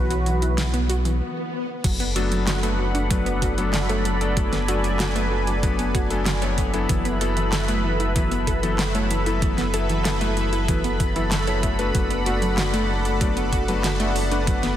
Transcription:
Already playing: B1 E3 F#3 B3 F#4 B4
0.10 F#3, closed hi-hat
0.26 E3, closed hi-hat
0.42 E4, closed hi-hat
0.58 E3, snare, closed hi-hat, swell
0.74 B3, closed hi-hat
0.90 F#4, closed hi-hat
1.05 E3, closed hi-hat
1.84 F#1 F#3 A4 D5 F#5 B5, kick, closed hi-hat, crash
2.00 B3, closed hi-hat
2.16 F#3 A3 B3 D4 F#4 A4, closed hi-hat
2.32 F#3, closed hi-hat
2.47 F#4, snare, clap, closed hi-hat
2.63 F#3 A3 B3 D4 B4, closed hi-hat
2.79 F#3
2.95 D4, closed hi-hat
3.11 F#3 A3 B3 D4 B4, kick, closed hi-hat
3.26 B3, closed hi-hat
3.42 F#4, kick, closed hi-hat
3.58 F#3 A3 B3 D4 A4, closed hi-hat
3.74 F#4, snare, clap, closed hi-hat
3.89 F#3 A3 B3 D4 C#5, closed hi-hat
4.05 F#3, closed hi-hat
4.21 F#3 A3 B3 D4 A4, closed hi-hat
4.37 F#3 G#5, kick, closed hi-hat
4.53 B3, snare, closed hi-hat
4.68 F#3 A3 B3 D4 F#4 A4, closed hi-hat
4.84 F#3, closed hi-hat
5.00 F#4, snare, clap, closed hi-hat
5.16 F#3 A3 B3 D4 B4, closed hi-hat
5.32 F#3
5.47 D4, closed hi-hat
5.63 F#3 A3 B3 D4 B4, kick, closed hi-hat
5.79 B3, closed hi-hat
5.95 F#4, kick, closed hi-hat
6.10 F#3 A3 B3 D4 A4, closed hi-hat
6.26 F#4, snare, clap, closed hi-hat
6.42 F#3 A3 B3 D4 C#5, closed hi-hat
6.58 F#3, kick, closed hi-hat
6.74 F#3 B3 D4 E4 A4, closed hi-hat
6.89 F#1 E3 A4 B4 E5 B5, kick, closed hi-hat
7.05 B3, closed hi-hat
7.21 F#3 B3 E4 A4, closed hi-hat
7.37 E3, closed hi-hat
7.53 A4, snare, clap, closed hi-hat
7.68 F#3 A3 B3 E4 B4, closed hi-hat
7.84 E3
8.00 E4, closed hi-hat
8.16 E3 F#3 B3 E4 B4, kick, closed hi-hat
8.32 B3, closed hi-hat
8.47 A4, kick, closed hi-hat
8.63 E3 F#3 B3 E4 A4, closed hi-hat
8.79 A4, snare, clap, closed hi-hat
8.95 F#3 A3 B3 E4 C#5, closed hi-hat
9.11 E3, closed hi-hat
9.26 F#3 B3 E4 A4, closed hi-hat
9.42 E3, kick, closed hi-hat
9.58 B3, snare, closed hi-hat
9.74 F#3 B3 E4 A4, closed hi-hat
9.89 E3, closed hi-hat
10.05 A4, snare, clap, closed hi-hat
10.21 F#3 A3 B3 E4 B4, closed hi-hat
10.37 E3, closed hi-hat
10.53 E4, closed hi-hat
10.68 E3 F#3 B3 E4 B4, kick, closed hi-hat
10.84 B3, closed hi-hat
11.00 E3, kick, closed hi-hat
11.16 E3 F#3 B3 E4 A4, closed hi-hat
11.32 A4, snare, clap, closed hi-hat
11.47 F#3 B3 E4 A4 C#5, closed hi-hat
11.63 A3, kick, closed hi-hat
11.79 A3 B3 D4 F#4 B4, closed hi-hat
11.95 F#1 F#3 D5 F#5, kick, closed hi-hat
12.10 B3, closed hi-hat
12.26 A3 B3 D4 F#4 B4, closed hi-hat
12.42 F#3, closed hi-hat
12.58 F#4, snare, clap, closed hi-hat
12.74 A3 B3 D4 F#4 D5, closed hi-hat
12.89 F#3
13.05 D4, closed hi-hat
13.21 F#3 A3 B3 D4 F#4 D5, kick, closed hi-hat
13.37 B3, closed hi-hat
13.53 F#4, kick, closed hi-hat
13.68 F#3 A3 B3 D4 F#4 B4, closed hi-hat
13.84 F#4, snare, clap, closed hi-hat
14.00 A3 B3 D4 F#4 E5, closed hi-hat
14.16 F#3, open hi-hat
14.31 A3 B3 D4 F#4 B4, closed hi-hat
14.47 F#3, kick, closed hi-hat
14.63 B3, snare, closed hi-hat

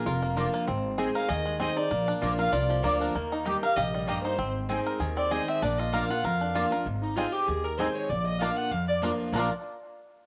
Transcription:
Already playing: A#3 A#4
0.06 F1 F2 F4 A#4
0.22 A#3
0.36 F3 A#3 D4 F4 D5 A#5
0.54 A#3
0.68 G#1 G#2 C4
0.98 G#3 C4 D#4 G#4 D#5 G#5
1.15 A#4 F5
1.29 D#2 D#3 G#4 D#5
1.45 G#3
1.60 G#3 C4 D#4 G#4 D#5 G#5
1.76 D#4 G#4 D5
1.91 A#1 A#2 A#3
2.08 D4
2.21 A#1 F3 A#3 D4 F4 D5 A#5
2.38 D4 F4 A#4 F5
2.52 C2 F2 F4 D5
2.70 F3
2.83 D2 F3 A#3 D4 F4 D5 A#5
3.01 D4 A#4
3.15 D#2 D#3 A#3
3.32 D#4
3.45 G3 A#3 D#4 G4 D#5 G5
3.63 D#4 G4 A#4 F5
3.77 A#1 C3 G4 D#5
3.94 G3
4.07 G2 A#3 G4 D#5 G5
4.24 D#4 C5
4.38 G#1 G#2 C4
4.69 G#3 C4 D#4 G#4 D#5 G#5
4.86 A#4
5.00 D#2 D#3 G#4
5.17 C4 D5
5.30 G#3 C4 D#4 G#4 D#5 G#5
5.48 C4 E5
5.62 A#1 A#2 D4 D5
5.79 F4 D#5
5.92 F3 A#3 D4 F4 A#4 D5 F5 A#5
6.10 D4 F4 F#5
6.24 F2 A#4 F5
6.41 D4
6.55 F3 A#3 D4 F4 D5 A#5
6.71 D4 F4 A#4
6.85 G#1 G#2
7.02 D#4
7.16 G#3 C4 D#4 F4 G#4 D#5 G#5
7.32 G4
7.47 D#2 D#3 G#4
7.64 A#4
7.78 G#3 C4 D#4 G#4 C5 D#5 G#5
7.95 C#5
8.09 A#1 A#2 D5
8.24 D#5
8.39 F3 A#3 D4 F4 D5 F5 A#5
8.56 F#5
8.71 F2 F5
8.88 D5
9.02 F3 A#3 D4 F4 D5 A#5
9.32 A#1 A#2 F3 A#3 D4 F4 D5 A#5
9.38 F4 A#4

